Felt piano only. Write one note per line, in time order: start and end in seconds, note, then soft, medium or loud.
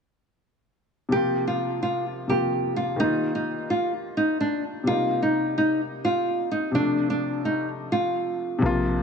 1.09 2.25 C3 medium
1.09 2.26 F3 medium
1.13 2.28 A#3 medium
1.13 2.29 F4 medium
2.27 2.99 C3 medium
2.27 2.99 F3 soft
2.27 3.00 A#3 soft
2.27 3.01 F4 medium
2.96 4.82 D#3 medium
2.96 4.83 G3 medium
3.01 4.84 A#3 medium
3.01 4.85 F4 medium
4.84 6.69 C3 medium
4.84 6.70 G3 medium
4.88 6.72 A#3 medium
4.88 6.73 D#4 medium
6.71 8.57 C3 medium
6.71 8.58 F3 medium
6.76 8.59 A3 medium
6.76 8.61 D4 medium
8.59 9.03 C3 medium
8.59 9.03 F3 medium
8.63 9.03 A#3 medium
8.63 9.03 F4 medium